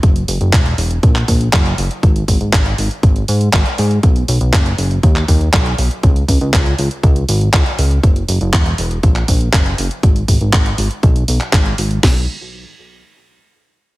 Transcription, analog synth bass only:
X:1
M:4/4
L:1/16
Q:1/4=120
K:F#mix
V:1 name="Analog synth bass" clef=bass
F,,,2 F,,, F,,, E,,,2 E,,,2 A,,,2 A,,,2 F,,,2 F,,, z | G,,,2 G,,, G,,, G,,,2 G,,, z G,,,2 G,,2 G,,, z G,,2 | B,,,2 B,,, B,,, F,,,2 F,,,2 D,,2 D,,2 B,,,2 B,,, z | C,,2 C,, C,, C,,2 C,, z C,,2 G,,,2 C,, z C,,2 |
F,,,2 F,,, F,,, E,,,2 E,,,2 A,,,2 A,,,2 F,,,2 F,,, z | G,,,2 G,,, G,,, G,,,2 G,,, z B,,,2 B,,, z G,,,2 G,,,2 | B,,,2 z12 z2 |]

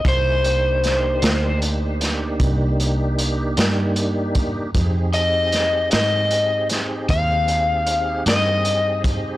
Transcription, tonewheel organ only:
X:1
M:12/8
L:1/8
Q:3/8=51
K:Cm
V:1 name="Tonewheel organ"
[B,E=EA] [B,D_EG]8- [B,DEG]3 | [CEGA]12 |]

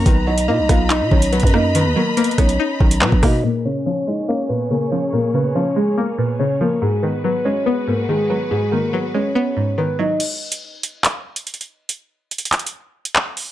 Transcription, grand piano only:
X:1
M:4/4
L:1/8
Q:1/4=142
K:Bbphr
V:1 name="Grand piano"
[=B,=B] [^D^d] [Dd] [Ff] [Dd] [_D_d] [B,B] [^D^d] | [=B,=B] [^A,^A] [B,B] [Dd]3 [B,B] [^D^d] | [B,B] [Dd] [Dd] [Ee] [Dd] [Cc] [B,B] [Dd] | [B,B] [Cc] [Dd] [A,A] [B,B] [Cc] [Dd] [B,B] |
[A,A] [Cc] [Cc] [Dd] [Cc] [B,B] [A,A] [Cc] | [A,A] [B,B] [Cc] [Dd]3 [Cc] [Ee] | z8 | z8 |]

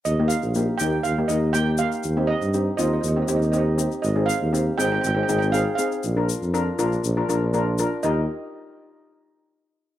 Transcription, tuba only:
X:1
M:4/4
L:1/16
Q:1/4=120
K:Eb
V:1 name="Tuba" clef=bass
E,,3 B,,,3 E,,2 E,,2 E,,6 | E,,3 G,,3 E,,2 E,,2 E,,6 | A,,,3 E,,3 A,,,2 A,,,2 A,,,4 z2 | B,,,3 F,,3 B,,,2 B,,,2 B,,,6 |
E,,2 z12 z2 |]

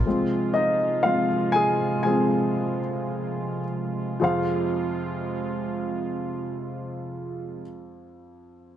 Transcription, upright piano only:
X:1
M:4/4
L:1/8
Q:1/4=105
K:Fm
V:1 name="Upright piano"
z2 [Ee]2 [Ff]2 [Aa]2 | [Aa]6 z2 | [FAcf]8- | [FAcf]8 |]
V:2 name="Upright piano" clef=bass
[F,A,C]3 z [F,A,C] z3 | [F,A,C]3 z4 z | F,,8- | F,,8 |]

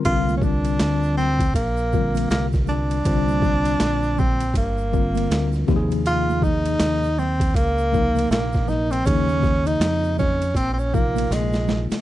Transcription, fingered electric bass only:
X:1
M:4/4
L:1/16
Q:"Swing 16ths" 1/4=80
K:Cm
V:1 name="Fingered electric bass" clef=bass
C,,4 D,,4 B,,,4 C,,4 | C,,4 B,,,4 G,,,4 D,,2 E,,2- | E,,4 E,,4 _D,,4 B,,,4 | E,,4 F,,4 B,,,4 B,,,3 z |]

